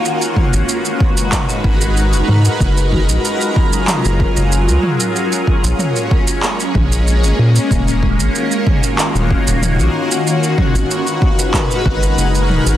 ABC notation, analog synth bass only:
X:1
M:4/4
L:1/16
Q:1/4=94
K:G#dor
V:1 name="Analog synth bass" clef=bass
z3 G,,, z6 G,,,3 F,,, G,, z | F,,,3 A,,, z4 z F,,, z F,,,2 C,, z2 | z3 A,,, z6 A,,,3 G,,, A,, z | D,,,3 G,,, z4 z D,,, z D,,,2 A,,, z2 |
z3 G,,, z6 G,,,2 F,,,2 D,,, G,,, |]